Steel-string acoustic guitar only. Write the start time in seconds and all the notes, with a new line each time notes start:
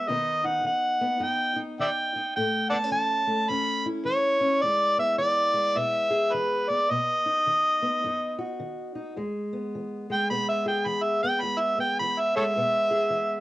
0.08 B2 D#3 B3 D#4
0.44 D#4
0.64 D#3
1.01 B3
1.20 F#2 D#4
1.56 D#4
1.79 D#3
2.16 D#4
2.37 A2 A3
2.71 B3
2.84 C#4
2.91 E3
3.27 A3
3.49 E2 C#4
3.86 E4
4.05 E3
4.41 C#4
4.63 E2 G#3
4.98 B3
5.18 E3
5.54 G#3
5.75 B2 B3
6.10 G#4
6.34 E3
6.70 B3
6.90 B2 B3
7.26 D#4
7.47 D#3
7.82 B3
8.04 F#2 D#4
8.38 F#4
8.59 D#3
8.95 D#4
9.16 E2 G#3
9.53 B3
9.75 E3
10.10 G#3
10.30 B2 B3
10.66 G#4
10.86 E3
11.24 B3
11.42 E2 G#3
11.78 B3
12.00 E3
12.37 G#3
12.56 B2 B3
12.91 G#4
13.10 E3